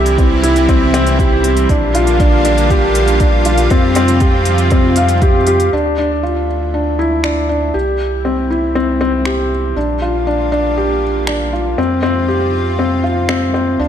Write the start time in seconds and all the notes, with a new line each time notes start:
Already playing: C2 C3 E3 G3 E4 G4
0.06 closed hi-hat
0.18 C4, kick, closed hi-hat
0.43 E4, closed hi-hat
0.56 closed hi-hat
0.69 C4, kick, closed hi-hat
0.94 C4, closed hi-hat
1.07 closed hi-hat
1.19 G4, kick, closed hi-hat
1.44 closed hi-hat
1.57 closed hi-hat
1.69 A#1 D3 G3 A#3 D4 F4, kick, closed hi-hat
1.95 F4, closed hi-hat
2.07 closed hi-hat
2.20 D4, kick, closed hi-hat
2.45 D4, closed hi-hat
2.58 closed hi-hat
2.70 G4, kick, closed hi-hat
2.95 closed hi-hat
3.08 closed hi-hat
3.20 D4, kick, closed hi-hat
3.45 F4, closed hi-hat
3.58 closed hi-hat
3.70 F2 C3 F3 C4, kick, closed hi-hat
3.95 C4, closed hi-hat
4.08 closed hi-hat
4.20 G4, kick, closed hi-hat
4.45 closed hi-hat
4.58 closed hi-hat
4.70 C4, kick, closed hi-hat
4.96 F5, closed hi-hat
5.08 closed hi-hat
5.22 G4, kick, closed hi-hat
5.47 G4, closed hi-hat
5.60 closed hi-hat
5.72 D2 D3 F3 A3 D4 E4
5.98 D4
6.23 F4
6.74 D4
6.99 E4
7.24 D4, finger snap
7.49 D4
7.74 C2 C3 E3 G3 G4
8.25 C4
8.50 E4
8.75 C4
9.01 C4
9.25 G4, finger snap
9.76 A#1 D3 A#3 D4 F4
10.02 F4
10.27 D4
10.52 D4
10.78 G4
11.27 D4, finger snap
11.53 F4
11.78 F2 C3 F3 C4 F4
12.03 C4
12.28 G4
12.79 C4
13.04 F4
13.29 C4, finger snap
13.54 C4
13.79 D2 D3 F3 A3 D4 E4